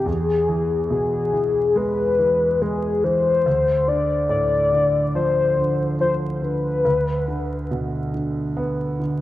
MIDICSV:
0, 0, Header, 1, 3, 480
1, 0, Start_track
1, 0, Tempo, 851064
1, 40, Time_signature, 4, 2, 24, 8
1, 5196, End_track
2, 0, Start_track
2, 0, Title_t, "Soft synth lead"
2, 0, Program_c, 0, 80
2, 38, Note_on_c, 0, 68, 87
2, 515, Note_off_c, 0, 68, 0
2, 519, Note_on_c, 0, 68, 83
2, 997, Note_on_c, 0, 71, 94
2, 1006, Note_off_c, 0, 68, 0
2, 1475, Note_on_c, 0, 68, 84
2, 1484, Note_off_c, 0, 71, 0
2, 1713, Note_on_c, 0, 72, 104
2, 1722, Note_off_c, 0, 68, 0
2, 2189, Note_on_c, 0, 74, 97
2, 2198, Note_off_c, 0, 72, 0
2, 2423, Note_off_c, 0, 74, 0
2, 2426, Note_on_c, 0, 74, 96
2, 2882, Note_off_c, 0, 74, 0
2, 2906, Note_on_c, 0, 72, 99
2, 3362, Note_off_c, 0, 72, 0
2, 3388, Note_on_c, 0, 72, 89
2, 3467, Note_off_c, 0, 72, 0
2, 3627, Note_on_c, 0, 71, 92
2, 4567, Note_off_c, 0, 71, 0
2, 5196, End_track
3, 0, Start_track
3, 0, Title_t, "Grand piano"
3, 0, Program_c, 1, 0
3, 0, Control_c, 1, 64, 127
3, 31, Note_on_c, 1, 40, 55
3, 48, Control_c, 1, 64, 0
3, 155, Control_c, 1, 64, 127
3, 273, Note_on_c, 1, 52, 50
3, 510, Note_on_c, 1, 47, 45
3, 740, Note_off_c, 1, 52, 0
3, 748, Note_on_c, 1, 52, 45
3, 992, Note_on_c, 1, 56, 55
3, 1225, Note_off_c, 1, 52, 0
3, 1234, Note_on_c, 1, 52, 46
3, 1450, Note_off_c, 1, 47, 0
3, 1467, Note_off_c, 1, 56, 0
3, 1476, Note_on_c, 1, 56, 52
3, 1706, Note_off_c, 1, 52, 0
3, 1714, Note_on_c, 1, 52, 50
3, 1927, Note_off_c, 1, 40, 0
3, 1939, Note_off_c, 1, 56, 0
3, 1946, Note_off_c, 1, 52, 0
3, 1952, Note_on_c, 1, 38, 58
3, 1960, Control_c, 1, 64, 0
3, 2060, Control_c, 1, 64, 127
3, 2187, Note_on_c, 1, 50, 49
3, 2420, Note_on_c, 1, 45, 47
3, 2655, Note_off_c, 1, 50, 0
3, 2663, Note_on_c, 1, 50, 47
3, 2905, Note_on_c, 1, 53, 53
3, 3133, Note_off_c, 1, 50, 0
3, 3142, Note_on_c, 1, 50, 45
3, 3358, Note_off_c, 1, 45, 0
3, 3376, Note_off_c, 1, 53, 0
3, 3384, Note_on_c, 1, 53, 48
3, 3611, Note_off_c, 1, 50, 0
3, 3620, Note_on_c, 1, 50, 44
3, 3840, Note_off_c, 1, 38, 0
3, 3849, Note_off_c, 1, 53, 0
3, 3855, Note_off_c, 1, 50, 0
3, 3862, Note_on_c, 1, 38, 55
3, 3871, Control_c, 1, 64, 0
3, 3979, Control_c, 1, 64, 127
3, 4106, Note_on_c, 1, 50, 49
3, 4349, Note_on_c, 1, 47, 44
3, 4583, Note_off_c, 1, 50, 0
3, 4591, Note_on_c, 1, 50, 43
3, 4831, Note_on_c, 1, 59, 50
3, 5066, Note_off_c, 1, 50, 0
3, 5074, Note_on_c, 1, 50, 44
3, 5196, Note_off_c, 1, 38, 0
3, 5196, Note_off_c, 1, 47, 0
3, 5196, Note_off_c, 1, 50, 0
3, 5196, Note_off_c, 1, 59, 0
3, 5196, End_track
0, 0, End_of_file